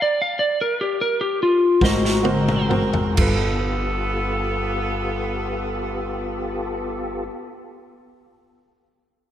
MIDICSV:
0, 0, Header, 1, 7, 480
1, 0, Start_track
1, 0, Tempo, 803213
1, 833, Tempo, 868307
1, 1313, Tempo, 928793
1, 1793, Time_signature, 12, 3, 24, 8
1, 1793, Tempo, 964630
1, 4838, End_track
2, 0, Start_track
2, 0, Title_t, "Electric slide guitar"
2, 0, Program_c, 0, 29
2, 13, Note_on_c, 0, 74, 85
2, 116, Note_off_c, 0, 74, 0
2, 129, Note_on_c, 0, 77, 93
2, 233, Note_off_c, 0, 77, 0
2, 234, Note_on_c, 0, 74, 80
2, 345, Note_off_c, 0, 74, 0
2, 367, Note_on_c, 0, 70, 87
2, 472, Note_off_c, 0, 70, 0
2, 484, Note_on_c, 0, 67, 78
2, 592, Note_off_c, 0, 67, 0
2, 606, Note_on_c, 0, 70, 86
2, 716, Note_off_c, 0, 70, 0
2, 723, Note_on_c, 0, 67, 83
2, 837, Note_off_c, 0, 67, 0
2, 852, Note_on_c, 0, 65, 84
2, 1072, Note_off_c, 0, 65, 0
2, 1085, Note_on_c, 0, 75, 105
2, 1091, Note_on_c, 0, 66, 91
2, 1317, Note_off_c, 0, 66, 0
2, 1542, Note_off_c, 0, 75, 0
2, 4838, End_track
3, 0, Start_track
3, 0, Title_t, "Upright piano"
3, 0, Program_c, 1, 0
3, 1064, Note_on_c, 1, 66, 53
3, 1065, Note_on_c, 1, 70, 52
3, 1073, Note_on_c, 1, 72, 62
3, 1249, Note_off_c, 1, 66, 0
3, 1249, Note_off_c, 1, 70, 0
3, 1253, Note_off_c, 1, 72, 0
3, 1295, Note_on_c, 1, 66, 63
3, 1300, Note_on_c, 1, 70, 55
3, 1304, Note_on_c, 1, 72, 68
3, 1481, Note_off_c, 1, 66, 0
3, 1483, Note_off_c, 1, 70, 0
3, 1485, Note_off_c, 1, 72, 0
3, 1532, Note_on_c, 1, 66, 56
3, 1535, Note_on_c, 1, 70, 47
3, 1538, Note_on_c, 1, 72, 60
3, 1723, Note_off_c, 1, 66, 0
3, 1725, Note_off_c, 1, 70, 0
3, 1726, Note_off_c, 1, 72, 0
3, 1767, Note_on_c, 1, 65, 56
3, 1783, Note_on_c, 1, 69, 56
3, 1799, Note_on_c, 1, 71, 59
3, 3797, Note_off_c, 1, 65, 0
3, 3813, Note_off_c, 1, 69, 0
3, 3828, Note_off_c, 1, 71, 0
3, 4838, End_track
4, 0, Start_track
4, 0, Title_t, "Tonewheel organ"
4, 0, Program_c, 2, 16
4, 1056, Note_on_c, 2, 66, 77
4, 1057, Note_on_c, 2, 60, 71
4, 1059, Note_on_c, 2, 68, 79
4, 1060, Note_on_c, 2, 70, 78
4, 1775, Note_on_c, 2, 69, 69
4, 1779, Note_on_c, 2, 67, 66
4, 1780, Note_off_c, 2, 66, 0
4, 1780, Note_on_c, 2, 59, 68
4, 1780, Note_on_c, 2, 65, 61
4, 1781, Note_off_c, 2, 60, 0
4, 1782, Note_off_c, 2, 68, 0
4, 1782, Note_off_c, 2, 70, 0
4, 3805, Note_off_c, 2, 69, 0
4, 3809, Note_off_c, 2, 67, 0
4, 3810, Note_off_c, 2, 59, 0
4, 3810, Note_off_c, 2, 65, 0
4, 4838, End_track
5, 0, Start_track
5, 0, Title_t, "Saxophone section"
5, 0, Program_c, 3, 65
5, 1064, Note_on_c, 3, 60, 78
5, 1065, Note_on_c, 3, 70, 89
5, 1069, Note_on_c, 3, 66, 75
5, 1784, Note_off_c, 3, 60, 0
5, 1784, Note_off_c, 3, 70, 0
5, 1786, Note_off_c, 3, 66, 0
5, 1789, Note_on_c, 3, 69, 84
5, 1792, Note_on_c, 3, 65, 66
5, 1794, Note_on_c, 3, 59, 76
5, 3819, Note_off_c, 3, 69, 0
5, 3822, Note_off_c, 3, 65, 0
5, 3824, Note_off_c, 3, 59, 0
5, 4838, End_track
6, 0, Start_track
6, 0, Title_t, "Upright bass"
6, 0, Program_c, 4, 32
6, 1065, Note_on_c, 4, 32, 90
6, 1771, Note_off_c, 4, 32, 0
6, 1791, Note_on_c, 4, 31, 89
6, 3820, Note_off_c, 4, 31, 0
6, 4838, End_track
7, 0, Start_track
7, 0, Title_t, "Drums"
7, 1065, Note_on_c, 9, 36, 79
7, 1079, Note_on_c, 9, 38, 76
7, 1121, Note_off_c, 9, 36, 0
7, 1134, Note_off_c, 9, 38, 0
7, 1196, Note_on_c, 9, 38, 62
7, 1252, Note_off_c, 9, 38, 0
7, 1305, Note_on_c, 9, 48, 77
7, 1357, Note_off_c, 9, 48, 0
7, 1427, Note_on_c, 9, 47, 70
7, 1479, Note_off_c, 9, 47, 0
7, 1543, Note_on_c, 9, 45, 81
7, 1594, Note_off_c, 9, 45, 0
7, 1660, Note_on_c, 9, 43, 93
7, 1712, Note_off_c, 9, 43, 0
7, 1783, Note_on_c, 9, 49, 88
7, 1787, Note_on_c, 9, 36, 104
7, 1833, Note_off_c, 9, 49, 0
7, 1837, Note_off_c, 9, 36, 0
7, 4838, End_track
0, 0, End_of_file